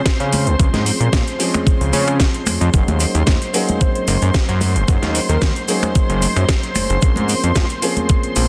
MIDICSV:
0, 0, Header, 1, 6, 480
1, 0, Start_track
1, 0, Tempo, 535714
1, 534, Time_signature, 4, 2, 24, 8
1, 7600, End_track
2, 0, Start_track
2, 0, Title_t, "Violin section"
2, 0, Program_c, 0, 48
2, 0, Note_on_c, 0, 72, 84
2, 0, Note_on_c, 0, 84, 85
2, 2439, Note_off_c, 0, 84, 0
2, 2441, Note_off_c, 0, 72, 0
2, 2450, Note_on_c, 0, 84, 86
2, 2452, Note_on_c, 0, 72, 81
2, 7600, Note_off_c, 0, 72, 0
2, 7600, Note_off_c, 0, 84, 0
2, 7600, End_track
3, 0, Start_track
3, 0, Title_t, "Soft synth lead"
3, 0, Program_c, 1, 80
3, 3416, Note_on_c, 1, 72, 92
3, 3497, Note_off_c, 1, 72, 0
3, 3540, Note_on_c, 1, 72, 75
3, 3613, Note_off_c, 1, 72, 0
3, 4742, Note_on_c, 1, 70, 91
3, 4865, Note_off_c, 1, 70, 0
3, 5093, Note_on_c, 1, 68, 88
3, 5176, Note_off_c, 1, 68, 0
3, 5225, Note_on_c, 1, 68, 74
3, 5295, Note_off_c, 1, 68, 0
3, 7600, End_track
4, 0, Start_track
4, 0, Title_t, "Grand piano"
4, 0, Program_c, 2, 0
4, 0, Note_on_c, 2, 53, 97
4, 0, Note_on_c, 2, 56, 88
4, 0, Note_on_c, 2, 60, 91
4, 0, Note_on_c, 2, 61, 88
4, 0, Note_on_c, 2, 68, 110
4, 502, Note_off_c, 2, 53, 0
4, 504, Note_off_c, 2, 56, 0
4, 506, Note_off_c, 2, 60, 0
4, 509, Note_off_c, 2, 61, 0
4, 511, Note_off_c, 2, 68, 0
4, 525, Note_on_c, 2, 53, 71
4, 529, Note_on_c, 2, 56, 64
4, 534, Note_on_c, 2, 60, 69
4, 537, Note_on_c, 2, 61, 65
4, 542, Note_on_c, 2, 68, 74
4, 1222, Note_off_c, 2, 53, 0
4, 1224, Note_off_c, 2, 56, 0
4, 1227, Note_off_c, 2, 60, 0
4, 1229, Note_off_c, 2, 61, 0
4, 1231, Note_off_c, 2, 68, 0
4, 1241, Note_on_c, 2, 53, 99
4, 1247, Note_on_c, 2, 56, 88
4, 1251, Note_on_c, 2, 60, 87
4, 1256, Note_on_c, 2, 61, 89
4, 1260, Note_on_c, 2, 68, 104
4, 2421, Note_off_c, 2, 53, 0
4, 2423, Note_off_c, 2, 56, 0
4, 2426, Note_off_c, 2, 60, 0
4, 2428, Note_off_c, 2, 61, 0
4, 2430, Note_off_c, 2, 68, 0
4, 2448, Note_on_c, 2, 54, 70
4, 2452, Note_on_c, 2, 58, 64
4, 2455, Note_on_c, 2, 61, 68
4, 2462, Note_on_c, 2, 63, 63
4, 2466, Note_on_c, 2, 68, 82
4, 3144, Note_off_c, 2, 54, 0
4, 3146, Note_off_c, 2, 58, 0
4, 3148, Note_off_c, 2, 61, 0
4, 3151, Note_off_c, 2, 63, 0
4, 3153, Note_off_c, 2, 68, 0
4, 3166, Note_on_c, 2, 54, 94
4, 3170, Note_on_c, 2, 58, 91
4, 3175, Note_on_c, 2, 61, 93
4, 3180, Note_on_c, 2, 63, 93
4, 3185, Note_on_c, 2, 68, 110
4, 4343, Note_off_c, 2, 54, 0
4, 4345, Note_off_c, 2, 58, 0
4, 4347, Note_off_c, 2, 61, 0
4, 4350, Note_off_c, 2, 63, 0
4, 4352, Note_off_c, 2, 68, 0
4, 4367, Note_on_c, 2, 54, 72
4, 4372, Note_on_c, 2, 58, 65
4, 4375, Note_on_c, 2, 61, 67
4, 4381, Note_on_c, 2, 63, 66
4, 4385, Note_on_c, 2, 68, 79
4, 5063, Note_off_c, 2, 54, 0
4, 5066, Note_off_c, 2, 58, 0
4, 5068, Note_off_c, 2, 61, 0
4, 5071, Note_off_c, 2, 63, 0
4, 5073, Note_off_c, 2, 68, 0
4, 5089, Note_on_c, 2, 54, 99
4, 5094, Note_on_c, 2, 58, 85
4, 5098, Note_on_c, 2, 61, 93
4, 5104, Note_on_c, 2, 63, 92
4, 5107, Note_on_c, 2, 68, 109
4, 6264, Note_off_c, 2, 54, 0
4, 6267, Note_off_c, 2, 58, 0
4, 6269, Note_off_c, 2, 61, 0
4, 6272, Note_off_c, 2, 63, 0
4, 6273, Note_off_c, 2, 68, 0
4, 6283, Note_on_c, 2, 53, 73
4, 6288, Note_on_c, 2, 58, 70
4, 6293, Note_on_c, 2, 60, 68
4, 6297, Note_on_c, 2, 61, 70
4, 6301, Note_on_c, 2, 68, 76
4, 6981, Note_off_c, 2, 53, 0
4, 6984, Note_off_c, 2, 58, 0
4, 6987, Note_off_c, 2, 60, 0
4, 6989, Note_off_c, 2, 61, 0
4, 6991, Note_off_c, 2, 68, 0
4, 7005, Note_on_c, 2, 53, 98
4, 7011, Note_on_c, 2, 58, 89
4, 7014, Note_on_c, 2, 60, 85
4, 7020, Note_on_c, 2, 61, 86
4, 7022, Note_on_c, 2, 68, 113
4, 7600, Note_off_c, 2, 53, 0
4, 7600, Note_off_c, 2, 58, 0
4, 7600, Note_off_c, 2, 60, 0
4, 7600, Note_off_c, 2, 61, 0
4, 7600, Note_off_c, 2, 68, 0
4, 7600, End_track
5, 0, Start_track
5, 0, Title_t, "Analog synth bass"
5, 0, Program_c, 3, 38
5, 179, Note_on_c, 3, 49, 96
5, 417, Note_on_c, 3, 37, 99
5, 431, Note_off_c, 3, 49, 0
5, 495, Note_off_c, 3, 37, 0
5, 533, Note_on_c, 3, 37, 101
5, 621, Note_off_c, 3, 37, 0
5, 657, Note_on_c, 3, 44, 85
5, 817, Note_off_c, 3, 44, 0
5, 898, Note_on_c, 3, 46, 92
5, 976, Note_off_c, 3, 46, 0
5, 1013, Note_on_c, 3, 46, 89
5, 1100, Note_off_c, 3, 46, 0
5, 1619, Note_on_c, 3, 37, 92
5, 1725, Note_off_c, 3, 37, 0
5, 1730, Note_on_c, 3, 49, 100
5, 2034, Note_off_c, 3, 49, 0
5, 2213, Note_on_c, 3, 41, 41
5, 2316, Note_off_c, 3, 41, 0
5, 2339, Note_on_c, 3, 41, 89
5, 2416, Note_off_c, 3, 41, 0
5, 2452, Note_on_c, 3, 30, 103
5, 2540, Note_off_c, 3, 30, 0
5, 2580, Note_on_c, 3, 39, 82
5, 2738, Note_off_c, 3, 39, 0
5, 2818, Note_on_c, 3, 39, 91
5, 2896, Note_off_c, 3, 39, 0
5, 2932, Note_on_c, 3, 39, 84
5, 3020, Note_off_c, 3, 39, 0
5, 3654, Note_on_c, 3, 30, 87
5, 3741, Note_off_c, 3, 30, 0
5, 3781, Note_on_c, 3, 42, 92
5, 3857, Note_off_c, 3, 42, 0
5, 4021, Note_on_c, 3, 42, 88
5, 4261, Note_on_c, 3, 30, 104
5, 4275, Note_off_c, 3, 42, 0
5, 4337, Note_off_c, 3, 30, 0
5, 4374, Note_on_c, 3, 30, 101
5, 4461, Note_off_c, 3, 30, 0
5, 4501, Note_on_c, 3, 39, 84
5, 4659, Note_off_c, 3, 39, 0
5, 4739, Note_on_c, 3, 39, 92
5, 4816, Note_off_c, 3, 39, 0
5, 4856, Note_on_c, 3, 39, 88
5, 4942, Note_off_c, 3, 39, 0
5, 5461, Note_on_c, 3, 30, 92
5, 5619, Note_off_c, 3, 30, 0
5, 5701, Note_on_c, 3, 42, 88
5, 5777, Note_off_c, 3, 42, 0
5, 6051, Note_on_c, 3, 30, 43
5, 6155, Note_off_c, 3, 30, 0
5, 6179, Note_on_c, 3, 30, 94
5, 6256, Note_off_c, 3, 30, 0
5, 6294, Note_on_c, 3, 34, 102
5, 6381, Note_off_c, 3, 34, 0
5, 6422, Note_on_c, 3, 44, 85
5, 6579, Note_off_c, 3, 44, 0
5, 6661, Note_on_c, 3, 41, 90
5, 6737, Note_off_c, 3, 41, 0
5, 6774, Note_on_c, 3, 41, 87
5, 6861, Note_off_c, 3, 41, 0
5, 7492, Note_on_c, 3, 34, 86
5, 7580, Note_off_c, 3, 34, 0
5, 7600, End_track
6, 0, Start_track
6, 0, Title_t, "Drums"
6, 50, Note_on_c, 9, 38, 117
6, 53, Note_on_c, 9, 42, 62
6, 54, Note_on_c, 9, 36, 127
6, 56, Note_on_c, 9, 69, 57
6, 140, Note_off_c, 9, 38, 0
6, 142, Note_off_c, 9, 42, 0
6, 143, Note_off_c, 9, 36, 0
6, 146, Note_off_c, 9, 69, 0
6, 181, Note_on_c, 9, 42, 40
6, 271, Note_off_c, 9, 42, 0
6, 291, Note_on_c, 9, 46, 110
6, 298, Note_on_c, 9, 69, 91
6, 299, Note_on_c, 9, 63, 103
6, 381, Note_off_c, 9, 46, 0
6, 387, Note_off_c, 9, 69, 0
6, 388, Note_off_c, 9, 63, 0
6, 420, Note_on_c, 9, 42, 37
6, 424, Note_on_c, 9, 69, 35
6, 510, Note_off_c, 9, 42, 0
6, 514, Note_off_c, 9, 69, 0
6, 533, Note_on_c, 9, 42, 65
6, 534, Note_on_c, 9, 36, 127
6, 539, Note_on_c, 9, 69, 45
6, 623, Note_off_c, 9, 36, 0
6, 623, Note_off_c, 9, 42, 0
6, 629, Note_off_c, 9, 69, 0
6, 659, Note_on_c, 9, 38, 37
6, 661, Note_on_c, 9, 63, 98
6, 662, Note_on_c, 9, 42, 38
6, 749, Note_off_c, 9, 38, 0
6, 750, Note_off_c, 9, 63, 0
6, 751, Note_off_c, 9, 42, 0
6, 772, Note_on_c, 9, 46, 108
6, 777, Note_on_c, 9, 69, 78
6, 862, Note_off_c, 9, 46, 0
6, 867, Note_off_c, 9, 69, 0
6, 902, Note_on_c, 9, 42, 38
6, 907, Note_on_c, 9, 69, 35
6, 992, Note_off_c, 9, 42, 0
6, 997, Note_off_c, 9, 69, 0
6, 1007, Note_on_c, 9, 63, 65
6, 1011, Note_on_c, 9, 38, 119
6, 1013, Note_on_c, 9, 36, 114
6, 1014, Note_on_c, 9, 42, 66
6, 1015, Note_on_c, 9, 69, 47
6, 1097, Note_off_c, 9, 63, 0
6, 1101, Note_off_c, 9, 38, 0
6, 1103, Note_off_c, 9, 36, 0
6, 1104, Note_off_c, 9, 42, 0
6, 1104, Note_off_c, 9, 69, 0
6, 1143, Note_on_c, 9, 42, 37
6, 1146, Note_on_c, 9, 69, 31
6, 1233, Note_off_c, 9, 42, 0
6, 1236, Note_off_c, 9, 69, 0
6, 1252, Note_on_c, 9, 46, 110
6, 1254, Note_on_c, 9, 69, 91
6, 1342, Note_off_c, 9, 46, 0
6, 1343, Note_off_c, 9, 69, 0
6, 1381, Note_on_c, 9, 69, 38
6, 1384, Note_on_c, 9, 26, 80
6, 1384, Note_on_c, 9, 42, 37
6, 1386, Note_on_c, 9, 63, 90
6, 1470, Note_off_c, 9, 69, 0
6, 1473, Note_off_c, 9, 26, 0
6, 1473, Note_off_c, 9, 42, 0
6, 1475, Note_off_c, 9, 63, 0
6, 1493, Note_on_c, 9, 36, 123
6, 1493, Note_on_c, 9, 42, 65
6, 1498, Note_on_c, 9, 69, 48
6, 1582, Note_off_c, 9, 36, 0
6, 1582, Note_off_c, 9, 42, 0
6, 1587, Note_off_c, 9, 69, 0
6, 1622, Note_on_c, 9, 42, 36
6, 1627, Note_on_c, 9, 69, 38
6, 1712, Note_off_c, 9, 42, 0
6, 1716, Note_off_c, 9, 69, 0
6, 1728, Note_on_c, 9, 63, 67
6, 1730, Note_on_c, 9, 69, 85
6, 1732, Note_on_c, 9, 46, 102
6, 1817, Note_off_c, 9, 63, 0
6, 1820, Note_off_c, 9, 69, 0
6, 1822, Note_off_c, 9, 46, 0
6, 1858, Note_on_c, 9, 69, 39
6, 1861, Note_on_c, 9, 26, 63
6, 1861, Note_on_c, 9, 42, 36
6, 1948, Note_off_c, 9, 69, 0
6, 1950, Note_off_c, 9, 26, 0
6, 1950, Note_off_c, 9, 42, 0
6, 1968, Note_on_c, 9, 38, 117
6, 1970, Note_on_c, 9, 42, 63
6, 1973, Note_on_c, 9, 36, 119
6, 1974, Note_on_c, 9, 69, 53
6, 2057, Note_off_c, 9, 38, 0
6, 2060, Note_off_c, 9, 42, 0
6, 2063, Note_off_c, 9, 36, 0
6, 2063, Note_off_c, 9, 69, 0
6, 2100, Note_on_c, 9, 42, 39
6, 2190, Note_off_c, 9, 42, 0
6, 2204, Note_on_c, 9, 69, 91
6, 2207, Note_on_c, 9, 63, 96
6, 2212, Note_on_c, 9, 26, 63
6, 2212, Note_on_c, 9, 46, 107
6, 2294, Note_off_c, 9, 69, 0
6, 2297, Note_off_c, 9, 63, 0
6, 2301, Note_off_c, 9, 26, 0
6, 2301, Note_off_c, 9, 46, 0
6, 2340, Note_on_c, 9, 69, 39
6, 2341, Note_on_c, 9, 42, 37
6, 2430, Note_off_c, 9, 69, 0
6, 2431, Note_off_c, 9, 42, 0
6, 2451, Note_on_c, 9, 69, 51
6, 2452, Note_on_c, 9, 42, 65
6, 2453, Note_on_c, 9, 36, 127
6, 2540, Note_off_c, 9, 69, 0
6, 2542, Note_off_c, 9, 36, 0
6, 2542, Note_off_c, 9, 42, 0
6, 2582, Note_on_c, 9, 42, 40
6, 2583, Note_on_c, 9, 63, 94
6, 2671, Note_off_c, 9, 42, 0
6, 2672, Note_off_c, 9, 63, 0
6, 2686, Note_on_c, 9, 69, 92
6, 2691, Note_on_c, 9, 46, 106
6, 2775, Note_off_c, 9, 69, 0
6, 2780, Note_off_c, 9, 46, 0
6, 2820, Note_on_c, 9, 69, 37
6, 2821, Note_on_c, 9, 42, 39
6, 2910, Note_off_c, 9, 42, 0
6, 2910, Note_off_c, 9, 69, 0
6, 2925, Note_on_c, 9, 63, 69
6, 2929, Note_on_c, 9, 38, 113
6, 2931, Note_on_c, 9, 42, 66
6, 2933, Note_on_c, 9, 36, 119
6, 2935, Note_on_c, 9, 69, 52
6, 3014, Note_off_c, 9, 63, 0
6, 3018, Note_off_c, 9, 38, 0
6, 3021, Note_off_c, 9, 42, 0
6, 3023, Note_off_c, 9, 36, 0
6, 3025, Note_off_c, 9, 69, 0
6, 3063, Note_on_c, 9, 42, 38
6, 3063, Note_on_c, 9, 69, 37
6, 3152, Note_off_c, 9, 42, 0
6, 3152, Note_off_c, 9, 69, 0
6, 3172, Note_on_c, 9, 69, 86
6, 3173, Note_on_c, 9, 46, 111
6, 3262, Note_off_c, 9, 46, 0
6, 3262, Note_off_c, 9, 69, 0
6, 3299, Note_on_c, 9, 69, 38
6, 3302, Note_on_c, 9, 42, 39
6, 3311, Note_on_c, 9, 63, 89
6, 3389, Note_off_c, 9, 69, 0
6, 3391, Note_off_c, 9, 42, 0
6, 3401, Note_off_c, 9, 63, 0
6, 3412, Note_on_c, 9, 42, 63
6, 3414, Note_on_c, 9, 36, 121
6, 3416, Note_on_c, 9, 69, 52
6, 3502, Note_off_c, 9, 42, 0
6, 3504, Note_off_c, 9, 36, 0
6, 3505, Note_off_c, 9, 69, 0
6, 3543, Note_on_c, 9, 42, 38
6, 3633, Note_off_c, 9, 42, 0
6, 3652, Note_on_c, 9, 46, 103
6, 3652, Note_on_c, 9, 69, 84
6, 3653, Note_on_c, 9, 63, 66
6, 3741, Note_off_c, 9, 46, 0
6, 3741, Note_off_c, 9, 69, 0
6, 3742, Note_off_c, 9, 63, 0
6, 3781, Note_on_c, 9, 42, 36
6, 3789, Note_on_c, 9, 69, 37
6, 3870, Note_off_c, 9, 42, 0
6, 3879, Note_off_c, 9, 69, 0
6, 3887, Note_on_c, 9, 69, 49
6, 3891, Note_on_c, 9, 38, 114
6, 3894, Note_on_c, 9, 42, 64
6, 3895, Note_on_c, 9, 36, 126
6, 3977, Note_off_c, 9, 69, 0
6, 3981, Note_off_c, 9, 38, 0
6, 3984, Note_off_c, 9, 36, 0
6, 3984, Note_off_c, 9, 42, 0
6, 4021, Note_on_c, 9, 42, 40
6, 4111, Note_off_c, 9, 42, 0
6, 4130, Note_on_c, 9, 63, 89
6, 4130, Note_on_c, 9, 69, 90
6, 4134, Note_on_c, 9, 46, 105
6, 4220, Note_off_c, 9, 63, 0
6, 4220, Note_off_c, 9, 69, 0
6, 4224, Note_off_c, 9, 46, 0
6, 4263, Note_on_c, 9, 42, 39
6, 4266, Note_on_c, 9, 69, 41
6, 4353, Note_off_c, 9, 42, 0
6, 4356, Note_off_c, 9, 69, 0
6, 4371, Note_on_c, 9, 69, 53
6, 4375, Note_on_c, 9, 36, 117
6, 4375, Note_on_c, 9, 42, 67
6, 4461, Note_off_c, 9, 69, 0
6, 4464, Note_off_c, 9, 42, 0
6, 4465, Note_off_c, 9, 36, 0
6, 4501, Note_on_c, 9, 38, 35
6, 4504, Note_on_c, 9, 42, 42
6, 4504, Note_on_c, 9, 63, 80
6, 4591, Note_off_c, 9, 38, 0
6, 4594, Note_off_c, 9, 42, 0
6, 4594, Note_off_c, 9, 63, 0
6, 4613, Note_on_c, 9, 46, 99
6, 4616, Note_on_c, 9, 69, 88
6, 4703, Note_off_c, 9, 46, 0
6, 4706, Note_off_c, 9, 69, 0
6, 4736, Note_on_c, 9, 69, 40
6, 4745, Note_on_c, 9, 42, 42
6, 4826, Note_off_c, 9, 69, 0
6, 4834, Note_off_c, 9, 42, 0
6, 4852, Note_on_c, 9, 69, 55
6, 4853, Note_on_c, 9, 38, 113
6, 4855, Note_on_c, 9, 36, 109
6, 4855, Note_on_c, 9, 63, 65
6, 4856, Note_on_c, 9, 42, 64
6, 4942, Note_off_c, 9, 69, 0
6, 4943, Note_off_c, 9, 38, 0
6, 4944, Note_off_c, 9, 63, 0
6, 4945, Note_off_c, 9, 36, 0
6, 4945, Note_off_c, 9, 42, 0
6, 4983, Note_on_c, 9, 42, 38
6, 4985, Note_on_c, 9, 69, 37
6, 5073, Note_off_c, 9, 42, 0
6, 5074, Note_off_c, 9, 69, 0
6, 5091, Note_on_c, 9, 69, 96
6, 5093, Note_on_c, 9, 46, 105
6, 5180, Note_off_c, 9, 69, 0
6, 5182, Note_off_c, 9, 46, 0
6, 5220, Note_on_c, 9, 63, 88
6, 5222, Note_on_c, 9, 69, 39
6, 5223, Note_on_c, 9, 26, 85
6, 5223, Note_on_c, 9, 42, 38
6, 5310, Note_off_c, 9, 63, 0
6, 5312, Note_off_c, 9, 69, 0
6, 5313, Note_off_c, 9, 26, 0
6, 5313, Note_off_c, 9, 42, 0
6, 5333, Note_on_c, 9, 42, 69
6, 5335, Note_on_c, 9, 69, 47
6, 5336, Note_on_c, 9, 36, 116
6, 5423, Note_off_c, 9, 42, 0
6, 5424, Note_off_c, 9, 69, 0
6, 5425, Note_off_c, 9, 36, 0
6, 5463, Note_on_c, 9, 42, 40
6, 5552, Note_off_c, 9, 42, 0
6, 5570, Note_on_c, 9, 63, 62
6, 5573, Note_on_c, 9, 69, 87
6, 5574, Note_on_c, 9, 46, 101
6, 5659, Note_off_c, 9, 63, 0
6, 5662, Note_off_c, 9, 69, 0
6, 5663, Note_off_c, 9, 46, 0
6, 5699, Note_on_c, 9, 69, 37
6, 5703, Note_on_c, 9, 26, 69
6, 5703, Note_on_c, 9, 42, 38
6, 5788, Note_off_c, 9, 69, 0
6, 5793, Note_off_c, 9, 26, 0
6, 5793, Note_off_c, 9, 42, 0
6, 5811, Note_on_c, 9, 38, 113
6, 5814, Note_on_c, 9, 42, 67
6, 5815, Note_on_c, 9, 36, 114
6, 5817, Note_on_c, 9, 69, 49
6, 5901, Note_off_c, 9, 38, 0
6, 5903, Note_off_c, 9, 42, 0
6, 5904, Note_off_c, 9, 36, 0
6, 5907, Note_off_c, 9, 69, 0
6, 5943, Note_on_c, 9, 42, 38
6, 6033, Note_off_c, 9, 42, 0
6, 6050, Note_on_c, 9, 69, 86
6, 6053, Note_on_c, 9, 26, 63
6, 6053, Note_on_c, 9, 46, 104
6, 6053, Note_on_c, 9, 63, 85
6, 6139, Note_off_c, 9, 69, 0
6, 6142, Note_off_c, 9, 63, 0
6, 6143, Note_off_c, 9, 26, 0
6, 6143, Note_off_c, 9, 46, 0
6, 6182, Note_on_c, 9, 42, 37
6, 6183, Note_on_c, 9, 69, 40
6, 6272, Note_off_c, 9, 42, 0
6, 6273, Note_off_c, 9, 69, 0
6, 6284, Note_on_c, 9, 69, 51
6, 6294, Note_on_c, 9, 36, 119
6, 6295, Note_on_c, 9, 42, 71
6, 6374, Note_off_c, 9, 69, 0
6, 6384, Note_off_c, 9, 36, 0
6, 6384, Note_off_c, 9, 42, 0
6, 6414, Note_on_c, 9, 63, 86
6, 6425, Note_on_c, 9, 42, 42
6, 6503, Note_off_c, 9, 63, 0
6, 6514, Note_off_c, 9, 42, 0
6, 6529, Note_on_c, 9, 69, 86
6, 6535, Note_on_c, 9, 46, 101
6, 6619, Note_off_c, 9, 69, 0
6, 6625, Note_off_c, 9, 46, 0
6, 6662, Note_on_c, 9, 42, 43
6, 6663, Note_on_c, 9, 69, 44
6, 6752, Note_off_c, 9, 42, 0
6, 6752, Note_off_c, 9, 69, 0
6, 6767, Note_on_c, 9, 69, 58
6, 6769, Note_on_c, 9, 38, 113
6, 6771, Note_on_c, 9, 63, 58
6, 6772, Note_on_c, 9, 42, 66
6, 6773, Note_on_c, 9, 36, 106
6, 6856, Note_off_c, 9, 69, 0
6, 6859, Note_off_c, 9, 38, 0
6, 6860, Note_off_c, 9, 63, 0
6, 6862, Note_off_c, 9, 42, 0
6, 6863, Note_off_c, 9, 36, 0
6, 6893, Note_on_c, 9, 69, 38
6, 6900, Note_on_c, 9, 42, 41
6, 6983, Note_off_c, 9, 69, 0
6, 6989, Note_off_c, 9, 42, 0
6, 7010, Note_on_c, 9, 46, 105
6, 7013, Note_on_c, 9, 69, 98
6, 7099, Note_off_c, 9, 46, 0
6, 7103, Note_off_c, 9, 69, 0
6, 7134, Note_on_c, 9, 69, 37
6, 7138, Note_on_c, 9, 63, 84
6, 7139, Note_on_c, 9, 42, 40
6, 7224, Note_off_c, 9, 69, 0
6, 7228, Note_off_c, 9, 42, 0
6, 7228, Note_off_c, 9, 63, 0
6, 7249, Note_on_c, 9, 42, 71
6, 7251, Note_on_c, 9, 69, 51
6, 7253, Note_on_c, 9, 36, 115
6, 7339, Note_off_c, 9, 42, 0
6, 7341, Note_off_c, 9, 69, 0
6, 7343, Note_off_c, 9, 36, 0
6, 7378, Note_on_c, 9, 42, 38
6, 7467, Note_off_c, 9, 42, 0
6, 7489, Note_on_c, 9, 46, 99
6, 7489, Note_on_c, 9, 63, 58
6, 7489, Note_on_c, 9, 69, 99
6, 7579, Note_off_c, 9, 46, 0
6, 7579, Note_off_c, 9, 63, 0
6, 7579, Note_off_c, 9, 69, 0
6, 7600, End_track
0, 0, End_of_file